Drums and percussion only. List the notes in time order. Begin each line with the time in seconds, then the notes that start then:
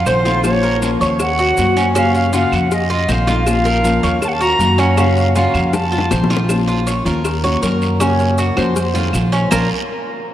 0.06 short guiro, claves, maracas
0.25 short guiro, maracas
0.44 cowbell, long guiro, claves, maracas
0.63 cowbell, maracas
0.82 cowbell, short guiro, maracas
1.01 short guiro, maracas
1.19 cowbell, long guiro, claves, maracas
1.39 maracas
1.57 cowbell, short guiro, maracas
1.77 short guiro, maracas
1.96 cowbell, long guiro, claves, maracas
2.15 cowbell, maracas
2.33 cowbell, short guiro, maracas
2.52 cowbell, short guiro, claves, maracas
2.71 cowbell, long guiro, maracas
2.90 maracas
3.09 cowbell, short guiro, claves, maracas
3.27 cowbell, short guiro, maracas
3.46 cowbell, long guiro, claves, maracas
3.65 cowbell, maracas
3.84 cowbell, short guiro, maracas
4.03 short guiro, maracas
4.22 cowbell, long guiro, claves, maracas
4.41 maracas
4.59 cowbell, short guiro, maracas
4.78 short guiro, maracas
4.97 cowbell, long guiro, claves, maracas
5.17 cowbell, maracas
5.36 cowbell, short guiro, maracas
5.54 cowbell, short guiro, claves, maracas
5.73 cowbell, high bongo, long guiro, maracas
5.92 maracas
5.98 high bongo
6.11 cowbell, low bongo, short guiro, claves, maracas
6.24 low bongo
6.30 cowbell, short guiro, maracas
6.37 low bongo
6.49 cowbell, long guiro, claves, maracas
6.68 cowbell, maracas
6.87 cowbell, short guiro, maracas
7.06 short guiro, maracas
7.24 cowbell, long guiro, claves, maracas
7.44 maracas
7.63 cowbell, short guiro, maracas
7.81 short guiro, maracas
8.00 cowbell, long guiro, claves, maracas
8.19 cowbell, maracas
8.38 cowbell, short guiro, maracas
8.57 cowbell, short guiro, claves, maracas
8.76 cowbell, long guiro, maracas
8.95 maracas
9.13 cowbell, short guiro, claves, maracas
9.33 cowbell, short guiro, maracas
9.51 low bongo, long guiro, claves, maracas